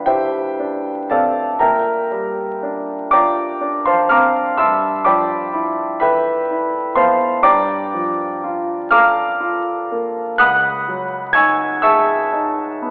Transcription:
0.00 1.56 D2 soft
0.00 1.62 F3 soft
0.00 0.39 D4 soft
0.00 1.62 B4 soft
0.00 0.06 C5 soft
0.00 0.07 E5 soft
0.00 1.11 F5 soft
0.00 0.06 G5 soft
0.00 1.10 A5 soft
0.00 1.62 B5 medium
0.00 1.62 C6 medium
0.06 0.88 E4 soft
0.06 1.05 G4 soft
0.06 1.05 C5 soft
0.06 1.05 E5 soft
0.06 1.08 G5 medium
0.59 1.40 D4 soft
1.10 1.60 C4 soft
1.10 1.57 A4 soft
1.10 1.57 D5 soft
1.10 1.57 F5 soft
1.10 1.60 A5 medium
1.59 4.54 A#2 soft
1.59 3.07 A#4 soft
1.59 3.07 E5 soft
1.59 3.07 G5 soft
1.59 3.10 A#5 medium
2.11 2.91 G3 soft
2.63 3.42 D4 soft
3.11 3.91 F4 soft
3.11 3.82 D5 soft
3.11 3.82 G5 soft
3.11 3.82 A#5 soft
3.11 3.85 D6 medium
3.61 4.38 D4 soft
3.85 4.08 C5 soft
3.85 4.08 F5 soft
3.85 4.08 A5 soft
3.85 4.09 C6 medium
4.09 4.58 C4 soft
4.09 4.55 F5 soft
4.09 4.55 A#5 soft
4.09 4.55 D6 soft
4.09 4.57 F6 medium
4.57 7.42 G2 soft
4.57 5.03 E5 soft
4.57 5.03 A5 soft
4.57 5.03 C6 soft
4.57 5.05 E6 medium
5.05 5.81 F3 soft
5.05 5.96 D5 soft
5.05 5.97 G5 soft
5.05 5.96 B5 soft
5.05 6.00 D6 medium
5.53 6.29 E4 soft
6.00 6.77 A4 soft
6.00 6.93 B4 soft
6.00 6.93 E5 soft
6.00 6.93 G5 soft
6.00 6.96 B5 medium
6.51 7.27 E4 soft
6.95 7.45 B3 soft
6.95 7.41 C5 soft
6.95 7.42 F5 soft
6.95 7.41 A5 soft
6.95 7.45 C6 medium
7.43 10.36 G2 soft
7.43 8.87 D5 medium
7.43 8.87 G5 medium
7.43 8.87 A#5 medium
7.43 8.90 D6 medium
7.94 8.72 F3 soft
8.44 9.22 F4 soft
8.90 9.72 A4 soft
8.90 10.36 F5 medium
8.90 10.37 A#5 medium
8.90 10.36 D6 medium
8.90 10.40 F6 medium
9.40 10.20 F4 soft
9.91 10.40 A#3 soft
10.38 12.91 C#2 soft
10.38 11.32 F#5 medium
10.38 11.32 B5 medium
10.38 11.32 D#6 medium
10.38 11.35 F#6 medium
10.88 11.65 F#3 soft
11.33 12.14 D#4 soft
11.33 11.81 G#5 medium
11.33 11.81 C#6 medium
11.33 11.81 E6 medium
11.33 11.83 G#6 medium
11.82 12.63 G#4 soft
11.82 12.91 E5 medium
11.82 12.91 A5 medium
11.82 12.91 C#6 medium
11.82 12.91 E6 medium
12.33 12.91 D#4 soft
12.82 12.91 B3 soft

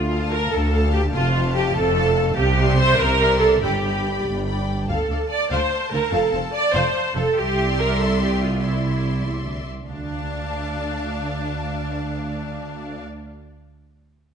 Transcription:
0.00 0.43 D2 medium
0.00 0.44 D2 medium
0.00 0.28 F4 medium
0.10 0.70 F5 medium
0.10 0.70 A5 medium
0.31 0.51 A#4 medium
0.51 1.06 D2 medium
0.51 0.93 A4 medium
0.71 1.11 F5 medium
0.71 1.13 A5 medium
0.93 1.01 G4 medium
1.12 1.68 F1 medium
1.12 1.68 F2 medium
1.12 1.54 F4 medium
1.12 1.33 F5 medium
1.12 1.34 A5 medium
1.35 1.95 F5 medium
1.35 1.95 A5 medium
1.56 1.75 G4 medium
1.74 2.30 F1 medium
1.74 2.29 F2 medium
1.74 2.36 A4 medium
1.96 2.37 F5 medium
1.96 2.36 A5 medium
2.36 2.91 C2 medium
2.36 2.91 C3 medium
2.36 2.77 G4 medium
2.57 3.18 D5 medium
2.57 3.19 E5 medium
2.57 3.18 C6 medium
2.79 2.99 C5 loud
2.98 3.54 C2 medium
2.98 3.54 C3 medium
2.98 3.41 A#4 loud
3.19 3.61 D5 medium
3.19 3.61 E5 medium
3.19 3.61 C6 medium
3.40 3.61 A4 medium
3.61 4.18 G1 medium
3.61 4.17 G2 medium
3.61 4.24 G4 medium
3.61 3.83 D5 soft
3.61 3.83 G5 soft
3.61 3.81 B5 soft
3.83 4.45 D5 soft
3.83 4.45 G5 soft
3.83 4.44 B5 soft
4.24 4.80 G1 medium
4.24 4.80 G2 medium
4.47 4.88 D5 soft
4.47 4.88 G5 soft
4.47 4.87 B5 soft
4.88 4.96 D2 medium
4.88 5.27 A4 medium
4.88 5.08 F5 medium
4.88 7.33 A5 medium
5.09 5.17 D2 soft
5.09 5.19 D5 soft
5.09 5.19 F5 soft
5.30 5.50 D5 medium
5.51 5.59 D2 medium
5.51 5.91 C5 medium
5.51 5.70 F5 medium
5.92 6.00 D2 soft
5.92 6.01 D2 soft
5.92 6.01 A4 soft
5.92 6.12 A#4 medium
5.92 6.01 F5 medium
6.12 6.20 F1 medium
6.12 6.20 F2 medium
6.12 6.53 A4 medium
6.12 6.32 F5 medium
6.32 6.42 F1 medium
6.32 6.40 F2 soft
6.32 6.43 C5 soft
6.32 6.43 F5 soft
6.54 6.74 D5 medium
6.74 6.83 F1 medium
6.74 6.82 F2 medium
6.74 7.16 C5 medium
6.74 6.94 F5 medium
7.15 7.25 F1 medium
7.15 7.23 F2 medium
7.15 7.25 A4 medium
7.15 7.37 A4 medium
7.15 7.25 F5 medium
7.36 9.17 C2 medium
7.36 9.65 C2 medium
7.36 7.79 G4 medium
7.36 8.58 D5 medium
7.36 8.58 E5 medium
7.36 8.59 C6 medium
7.80 8.00 A#4 medium
8.00 8.21 A4 medium
8.22 8.42 G4 medium
8.43 8.63 F4 medium
8.62 9.26 E4 soft
8.62 9.67 D5 soft
8.62 9.67 E5 soft
8.62 9.66 C6 soft
9.25 9.45 E2 soft
9.46 9.67 D2 soft
9.67 9.88 C2 soft
9.87 12.99 D2 soft
9.87 13.01 D2 soft
9.87 13.02 D4 medium
9.87 13.02 D5 soft
9.87 13.03 F5 soft
9.87 13.02 A5 medium

